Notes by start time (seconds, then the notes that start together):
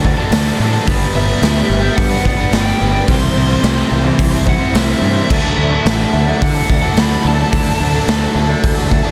Already playing: D2 A3 F#4 F#5
0.03 D3 F#3 A3 D4, muted overdriven electric guitar stroke, kick
0.17 F#3 A3 D4 F#4 A4
0.31 D2 D3 E3 F#3 A3 D4 F#4 A4, snare, open hi-hat
0.46 F#3 A3 D4
0.58 A2 D3 F#3 A3 D4 F#4
0.62 A4
0.73 F#3 A3 D4 F#4 A4
0.86 G1 G2 D3 G3 B3 D4 B4, kick, open hi-hat
1.14 G1 D3 G3 B3 D4 E5
1.27 B3 D4 B4
1.40 D2 G2 D3 G3 B3 D4 G4 B4, snare, open hi-hat
1.56 G3 B3 D4
1.68 G1 G3 B3 D4 B4, muted overdriven electric guitar stroke
1.81 G3 B3 D4, muted overdriven electric guitar stroke
1.96 G2 B3 F#5, kick, open hi-hat
2.09 B3 D4 B4
2.24 G1 D3 G3 B3 D4 F#5, muted overdriven electric guitar stroke, kick
2.37 G3 B3 D4 B4
2.51 G1 G2 D3 G3 B3 D4 B4 G5, snare, open hi-hat
2.66 G3 B3 D4
2.79 G1 D3 G3 B3 D4 B4
2.92 G3 B3 D4 B4
3.07 C2 C3 E3 G3 C4 E4 C5, kick, open hi-hat
3.13 C6
3.34 C2 C3 G3 C4 E4
3.47 G3 C4 E4 C5
3.61 C2 C3 E3 G3 C4 E4 G4 C5, snare, open hi-hat
3.76 G3 C4 E4
3.89 C2 G3 C4 E4 C5, muted overdriven electric guitar stroke
4.04 G3 C4 E4, muted overdriven electric guitar stroke
4.19 C2 C4, kick, open hi-hat
4.31 G3 C4 E4 C5
4.46 C3 G3 C4 E4 F#5, muted overdriven electric guitar stroke, kick
4.58 G3 C4 E4 C5
4.73 C2 C3 E3 G3 C4 E4 C5, snare, open hi-hat
4.77 E5
4.88 G3 C4 E4
5.01 G2 C3 G3 C4 E4 C5
5.15 G3 C4 E4 C5
5.28 D2 D3 F#3 A3 D4 F#4 A4 E5 F#5 D6, kick, crash
5.57 D2 D3 F#3 A3 D4
5.72 D4 F#4 A4
5.85 A1 D3 F#3 A3 D4 F#4 A4, snare, open hi-hat
5.99 F#3 A3 D4
6.12 D2 D3 D4 E4 F#4 A4, muted overdriven electric guitar stroke
6.27 F#3 A3 D4, muted overdriven electric guitar stroke
6.41 D3 A3 F#5, kick, open hi-hat
6.55 D4 F#4 A4
6.68 D2 D3 F#3 A3 D4 E4, muted overdriven electric guitar stroke, kick
6.82 F#3 A3 D4 F#4 A4
6.96 D2 D3 F#3 A3 D4 F#4 A4 B5, snare, open hi-hat
7.11 F#3 A3 D4
7.23 D2 D3 F#3 A3 D4 F#4 A4
7.27 A5
7.38 F#3 A3 D4 F#4 A4
7.51 D2 D3 F#3 A3 D4 F#4 A4 E6, kick, open hi-hat
7.80 D2 D3 F#3 A3 D4
7.93 D4 F#4 A4
8.06 D2 D3 F#3 A3 D4 F#4 A4, snare, open hi-hat
8.21 F#3 A3 D4
8.34 D2 D3 D4 E4 F#4 A4, muted overdriven electric guitar stroke
8.49 F#3 A3 D4, muted overdriven electric guitar stroke
8.63 D2 A3, kick, open hi-hat
8.75 D4 F#4 A4
8.90 D3 F#3 A3 D4 E4, muted overdriven electric guitar stroke, kick
9.03 F#3 A3 D4 F#4 A4